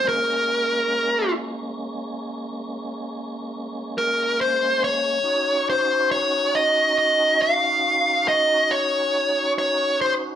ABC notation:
X:1
M:12/8
L:1/8
Q:3/8=46
K:Bbm
V:1 name="Lead electric guitar"
B3 z6 B c d- | d c d e e f2 e d2 d c |]
V:2 name="Tonewheel organ"
[A,B,D]12 | [DEG]12 |]